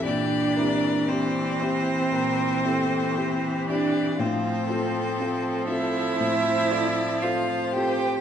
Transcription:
<<
  \new Staff \with { instrumentName = "Violin" } { \time 4/4 \key c \major \tempo 4 = 58 d''4 c''2~ c''8 d''8 | c''4. e''4. f''8 g''8 | }
  \new Staff \with { instrumentName = "Violin" } { \time 4/4 \key c \major g'8 bes'8 d''8 c''8 bes'8 a'8 g'4 | f'8 a'4. c''8 d''8 c''4 | }
  \new Staff \with { instrumentName = "Grand piano" } { \time 4/4 \key c \major bes,8 <c' e' g'>8 <c' e' g'>8 <c' e' g'>8 bes,8 <c' e' g'>8 <c' e' g'>8 <c' e' g'>8 | a,8 <c' f' a'>8 <c' f' a'>8 <c' f' a'>8 a,8 <c' f' a'>8 <c' f' a'>8 <c' f' a'>8 | }
  \new Staff \with { instrumentName = "Cello" } { \time 4/4 \key c \major d'4 c'2~ c'8 d'8 | c'4. e'4. f'8 g'8 | }
  \new Staff \with { instrumentName = "Viola" } { \clef bass \time 4/4 \key c \major e1 | f1 | }
>>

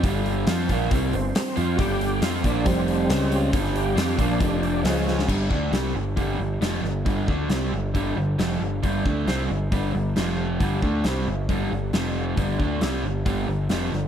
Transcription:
<<
  \new Staff \with { instrumentName = "Tonewheel organ" } { \time 4/4 \key g \minor \tempo 4 = 136 r2 r8 c'8 c'8 f'8 | <fis' g'>4 f'8 d'8 <g c'>2 | r8 g'4 d'4 d'8 <f gis>4 | r1 |
r1 | r1 | r1 | r1 | }
  \new Staff \with { instrumentName = "Overdriven electric guitar" } { \clef bass \time 4/4 \key g \minor <g, d g>4 <f c' f'>8 <bes, f bes>8 <c g c'>8 <g, d>8 r8 <f c' f'>8 | <g, d g>4 <f c' f'>8 <bes, f bes>8 <f, c f>4 <cis gis cis'>4 | <g, d g>4 <f c' f'>8 <bes, f bes>8 <f, c f>4 <cis gis cis'>4 | <g, d g>8 <d a d'>8 <c g c'>8 <g, d>8 <g, d g>8 <g, d>8 <f, c f>8 <g, d>8 |
<g, d g>8 <d a d'>8 <c g c'>8 <g, d>8 <g, d g>8 <g, d>8 <f, c f>8 <g, d>8 | <g, d g>8 <d a d'>8 <c g c'>8 <g, d>8 <g, d g>8 <g, d>8 <f, c f>4 | <g, d g>8 <d a d'>8 <c g c'>8 <g, d>8 <g, d g>8 <g, d>8 <f, c f>4 | <g, d g>8 <d a d'>8 <c g c'>8 <g, d>8 <g, d g>8 <g, d>8 <f, c f>8 <g, d>8 | }
  \new Staff \with { instrumentName = "Picked electric bass" } { \clef bass \time 4/4 \key g \minor g,,4 f,8 bes,,8 c,8 g,,8 r8 f,8 | g,,4 f,8 bes,,8 f,,4 cis,4 | g,,4 f,8 bes,,8 f,,4 cis,4 | g,,8 d,8 c,8 g,,8 g,,8 g,,8 f,,8 g,,8 |
g,,8 d,8 c,8 g,,8 g,,8 g,,8 f,,8 g,,8 | g,,8 d,8 c,8 g,,8 g,,8 g,,8 f,,4 | g,,8 d,8 c,8 g,,8 g,,8 g,,8 f,,4 | g,,8 d,8 c,8 g,,8 g,,8 g,,8 f,,8 g,,8 | }
  \new DrumStaff \with { instrumentName = "Drums" } \drummode { \time 4/4 <hho bd>8 hho8 <hho sn>8 <hho bd>8 <hho bd>8 hho8 <hho sn>8 hho8 | <hho bd>8 hho8 <hho sn>8 <hho bd>8 <hho bd>8 hho8 <hho sn>8 hho8 | <hho bd>16 sn16 hho8 <hho sn>8 <hho bd>8 <hho bd>8 hho8 <hho sn>8 sn16 sn16 | <cymc bd>8 bd8 <hho sn>4 <hho bd>4 <hho sn>8 sn8 |
<hho bd>8 bd8 <hho sn>4 <hho bd>4 <hho sn>4 | <hho bd>8 bd8 <hho sn>4 <hho bd>4 <hho sn>4 | <hho bd>8 bd8 <hho sn>4 <hho bd>4 <hho sn>4 | <hho bd>8 bd8 <hho sn>4 <hho bd>4 <hho sn>8 sn8 | }
>>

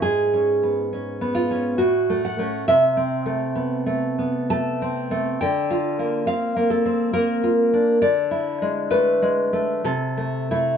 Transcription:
\new Staff \with { instrumentName = "Nylon-string guitar" } { \time 3/4 \key cis \phrygian \tempo 4 = 68 << { gis'4. f'8 fis'8 fis''8 | \key a \minor e''2 a''4 | g''4 f''8 a'8 bes'4 | d''4 b'4 a'4 | } \\ { \tuplet 3/2 { gis,8 cis'8 b8 cis'8 b8 cis'8 a,8 a8 <a cis'>8 } | \tuplet 3/2 { c8 c'8 a8 b8 a8 b8 a8 c'8 a8 } | \tuplet 3/2 { d8 f'8 bes8 c'8 bes8 c'8 bes8 f'8 d'8 } | \tuplet 3/2 { d8 e'8 gis8 a8 gis8 a8 c8 a8 <a e'>8 } | } >> }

